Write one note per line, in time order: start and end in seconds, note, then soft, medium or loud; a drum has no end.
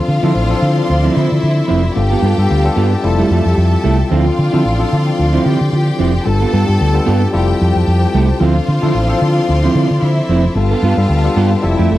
0.00 0.13 F3 medium
0.00 1.95 F3 medium
0.00 0.13 C4 medium
0.00 0.14 D4 medium
0.00 0.14 F4 medium
0.00 1.12 F4 medium
0.00 0.14 A4 medium
0.00 1.93 C5 medium
0.00 1.94 D5 medium
0.00 1.12 F5 loud
0.00 1.94 C6 medium
0.08 0.18 D3 medium
0.08 muted clean electric guitar stroke soft
0.23 0.31 D3 medium
0.23 0.44 F3 medium
0.23 0.34 F3 medium
0.23 0.44 C4 medium
0.23 0.33 C4 medium
0.23 0.44 D4 medium
0.23 0.33 E4 medium
0.23 0.44 E4 medium
0.23 0.44 A4 medium
0.35 0.53 A1 medium
0.35 muted clean electric guitar stroke soft
0.49 1.33 F3 medium
0.49 1.34 C4 medium
0.49 1.34 D4 medium
0.49 1.34 F4 medium
0.49 1.34 A4 loud
0.49 muted clean electric guitar stroke medium
0.62 0.80 D3 loud
0.77 muted clean electric guitar stroke soft
0.88 1.07 D2 loud
0.88 muted clean electric guitar stroke soft
1.04 1.14 F3 medium
1.04 1.15 C4 medium
1.04 1.15 E4 medium
1.15 1.26 D3 medium
1.15 1.28 F3 medium
1.15 1.28 C4 medium
1.15 1.95 E4 medium
1.15 1.29 E4 medium
1.15 1.95 E5 medium
1.31 1.39 D3 medium
1.31 muted clean electric guitar stroke soft
1.43 1.60 D3 medium
1.43 muted clean electric guitar stroke soft
1.57 muted clean electric guitar stroke soft
1.68 1.88 F1 medium
1.68 1.84 F3 medium
1.68 1.83 C4 medium
1.68 1.82 E4 medium
1.83 muted clean electric guitar stroke soft
1.95 2.14 G1 medium
1.95 2.28 G3 medium
1.95 2.28 B3 medium
1.95 2.28 D4 medium
1.95 2.29 F4 medium
1.95 3.01 G4 medium
1.95 4.09 G4 medium
1.95 2.29 A4 medium
1.95 3.03 B4 medium
1.95 3.03 F5 medium
1.95 3.02 G5 medium
1.95 4.09 A5 medium
1.95 muted clean electric guitar stroke soft
2.11 2.22 B3 medium
2.11 2.23 F4 medium
2.11 2.24 A4 medium
2.22 2.32 G2 loud
2.22 2.36 B3 medium
2.22 2.36 F4 medium
2.22 2.37 A4 medium
2.38 2.46 G2 medium
2.38 2.58 G3 medium
2.38 2.58 B3 medium
2.38 2.59 D4 medium
2.38 2.59 F4 medium
2.38 2.59 A4 medium
2.38 muted clean electric guitar stroke soft
2.51 2.68 D2 medium
2.64 3.02 G3 medium
2.64 3.03 B3 medium
2.64 3.04 D4 medium
2.64 3.03 F4 medium
2.64 3.03 A4 loud
2.64 muted clean electric guitar stroke medium
2.76 2.94 G2 loud
2.76 2.92 B3 medium
2.76 2.92 F4 medium
2.76 2.91 A4 medium
2.92 muted clean electric guitar stroke soft
3.02 3.21 F1 loud
3.02 3.90 G3 medium
3.02 3.90 C4 medium
3.02 3.90 E4 medium
3.02 3.90 F4 medium
3.02 4.09 A4 medium
3.02 3.91 A4 medium
3.02 4.10 E5 medium
3.02 6.22 G5 medium
3.02 4.09 A5 medium
3.02 muted clean electric guitar stroke soft
3.18 3.30 G3 medium
3.18 3.31 A3 medium
3.18 3.31 E4 medium
3.31 3.40 F2 medium
3.31 3.43 G3 soft
3.31 3.44 A3 medium
3.31 3.44 F4 medium
3.46 3.53 F2 medium
3.46 muted clean electric guitar stroke soft
3.57 3.75 F2 loud
3.57 muted clean electric guitar stroke soft
3.73 muted clean electric guitar stroke soft
3.84 4.02 C2 medium
3.84 4.00 G3 medium
3.84 3.99 A3 medium
3.84 3.98 E4 medium
3.99 muted clean electric guitar stroke soft
4.10 4.29 D2 medium
4.10 4.43 F3 medium
4.10 4.27 F3 medium
4.10 4.43 C4 medium
4.10 4.26 C4 medium
4.10 4.43 D4 medium
4.10 4.25 E4 medium
4.10 6.23 F4 medium
4.10 4.43 F4 medium
4.10 5.43 F4 medium
4.10 4.44 A4 medium
4.10 6.23 D5 medium
4.10 5.43 F5 medium
4.10 6.23 C6 medium
4.27 muted clean electric guitar stroke soft
4.38 4.48 D3 loud
4.38 muted clean electric guitar stroke soft
4.52 4.61 D3 medium
4.52 4.73 F3 medium
4.52 4.63 F3 medium
4.52 4.73 C4 medium
4.52 4.63 C4 medium
4.52 4.73 D4 medium
4.52 4.62 E4 medium
4.52 4.74 E4 medium
4.52 4.74 A4 medium
4.65 4.82 A1 medium
4.79 5.63 F3 medium
4.79 5.63 C4 medium
4.79 5.63 D4 medium
4.79 5.64 F4 medium
4.79 5.64 A4 medium
4.79 muted clean electric guitar stroke medium
4.93 5.10 D3 medium
5.06 muted clean electric guitar stroke soft
5.18 5.37 D2 medium
5.18 muted clean electric guitar stroke soft
5.33 5.45 F3 medium
5.33 5.46 C4 medium
5.33 5.46 E4 medium
5.45 5.55 D3 medium
5.45 5.58 F3 medium
5.45 5.59 C4 medium
5.45 5.59 E4 medium
5.45 6.24 G4 medium
5.45 6.24 G5 medium
5.60 5.68 D3 medium
5.60 muted clean electric guitar stroke soft
5.73 5.90 D3 medium
5.73 muted clean electric guitar stroke soft
5.88 muted clean electric guitar stroke soft
5.99 6.17 F1 medium
5.99 6.14 F3 medium
5.99 6.14 C4 medium
5.99 6.13 E4 medium
6.15 muted clean electric guitar stroke soft
6.25 6.44 G1 medium
6.25 6.58 G3 medium
6.25 6.58 B3 medium
6.25 6.58 D4 medium
6.25 6.58 F4 medium
6.25 8.39 G4 medium
6.25 7.31 A4 medium
6.25 6.58 A4 medium
6.25 7.32 B4 medium
6.25 8.39 G5 medium
6.25 7.31 A5 medium
6.25 7.32 A5 medium
6.25 muted clean electric guitar stroke soft
6.41 6.52 B3 medium
6.41 6.52 F4 medium
6.41 6.53 A4 medium
6.53 6.63 G2 loud
6.53 6.65 B3 medium
6.53 6.66 F4 medium
6.53 6.66 A4 medium
6.66 6.76 G2 medium
6.66 6.87 G3 medium
6.66 6.88 B3 medium
6.66 6.88 D4 medium
6.66 6.88 F4 medium
6.66 6.88 G4 medium
6.81 6.98 D2 medium
6.93 7.31 G3 medium
6.93 7.33 B3 medium
6.93 7.33 D4 medium
6.93 7.32 F4 medium
6.93 7.32 A4 medium
6.93 muted clean electric guitar stroke soft
7.06 7.25 G2 loud
7.06 7.22 B3 medium
7.06 7.21 F4 medium
7.06 7.19 A4 medium
7.21 muted clean electric guitar stroke soft
7.32 7.51 F1 loud
7.32 8.20 G3 medium
7.32 8.20 C4 medium
7.32 8.20 E4 medium
7.32 8.20 F4 medium
7.32 8.40 G4 medium
7.32 8.20 A4 loud
7.32 10.52 C5 medium
7.32 8.39 G5 medium
7.32 8.39 A5 medium
7.32 muted clean electric guitar stroke soft
7.49 muted clean electric guitar stroke soft
7.62 7.71 F2 medium
7.76 7.83 F2 medium
7.76 muted clean electric guitar stroke soft
7.87 8.05 F2 medium
7.87 muted clean electric guitar stroke soft
8.03 muted clean electric guitar stroke soft
8.14 8.31 C2 medium
8.14 8.30 G3 medium
8.14 8.29 A3 medium
8.14 8.28 E4 medium
8.29 muted clean electric guitar stroke soft
8.40 8.58 D2 loud
8.40 8.73 F3 medium
8.40 8.56 F3 medium
8.40 10.53 F3 medium
8.40 8.73 C4 medium
8.40 8.55 C4 medium
8.40 8.73 D4 medium
8.40 8.55 E4 medium
8.40 8.73 F4 medium
8.40 9.99 F4 medium
8.40 8.73 A4 medium
8.40 10.54 D5 medium
8.40 9.99 F5 medium
8.40 10.53 C6 medium
8.56 muted clean electric guitar stroke soft
8.68 8.78 D3 medium
8.68 muted clean electric guitar stroke soft
8.81 8.91 D3 medium
8.81 9.02 F3 medium
8.81 8.94 F3 medium
8.81 9.03 C4 medium
8.81 8.93 C4 medium
8.81 9.03 D4 medium
8.81 9.03 E4 medium
8.81 8.93 E4 medium
8.81 9.03 A4 medium
8.95 9.12 A1 loud
9.08 9.93 F3 medium
9.08 9.93 C4 medium
9.08 9.93 D4 medium
9.08 9.93 F4 medium
9.08 9.93 A4 medium
9.08 muted clean electric guitar stroke medium
9.22 9.39 D3 medium
9.37 muted clean electric guitar stroke medium
9.49 9.66 D2 loud
9.49 muted clean electric guitar stroke soft
9.64 9.74 F3 medium
9.64 9.75 C4 medium
9.64 9.76 E4 medium
9.75 9.85 D3 loud
9.75 9.88 F3 medium
9.75 9.88 C4 medium
9.75 9.88 E4 medium
9.91 9.98 D3 medium
9.91 muted clean electric guitar stroke soft
10.02 10.20 D3 medium
10.02 10.55 E4 medium
10.02 10.55 E5 medium
10.02 muted clean electric guitar stroke soft
10.18 muted clean electric guitar stroke soft
10.29 10.46 F1 medium
10.29 10.45 F3 medium
10.29 10.45 C4 medium
10.29 10.44 E4 medium
10.45 muted clean electric guitar stroke soft
10.55 10.73 G1 medium
10.55 10.88 G3 medium
10.55 10.88 B3 medium
10.55 10.88 D4 medium
10.55 11.61 F4 medium
10.55 10.88 F4 medium
10.55 11.98 G4 medium
10.55 10.88 A4 medium
10.55 11.62 B4 medium
10.55 11.61 F5 medium
10.55 11.98 G5 medium
10.55 11.98 A5 medium
10.55 muted clean electric guitar stroke soft
10.71 10.82 B3 medium
10.71 10.83 F4 medium
10.71 10.84 A4 medium
10.83 10.92 G2 medium
10.83 10.96 B3 medium
10.83 10.96 F4 medium
10.83 10.96 A4 medium
10.97 11.05 G2 medium
10.97 11.18 G3 medium
10.97 11.18 B3 medium
10.97 11.18 D4 medium
10.97 11.18 F4 medium
10.97 11.18 A4 medium
11.09 11.27 D2 medium
11.24 11.61 G3 medium
11.24 11.63 B3 medium
11.24 11.63 D4 medium
11.24 11.62 F4 medium
11.24 11.62 A4 medium
11.24 muted clean electric guitar stroke soft
11.36 11.54 G2 medium
11.36 11.52 B3 medium
11.36 11.52 F4 medium
11.36 11.51 A4 loud
11.52 muted clean electric guitar stroke soft
11.62 11.73 F1 medium
11.62 11.98 G3 medium
11.62 11.98 C4 medium
11.62 11.98 E4 medium
11.62 11.98 F4 medium
11.62 11.98 A4 medium
11.62 11.98 E5 medium
11.62 muted clean electric guitar stroke soft
11.78 11.87 F2 medium
11.78 11.89 A3 medium
11.78 11.90 E4 medium
11.78 11.91 G4 medium
11.90 11.98 F1 loud
11.90 11.98 A3 medium
11.90 11.98 E4 medium
11.90 11.98 A4 medium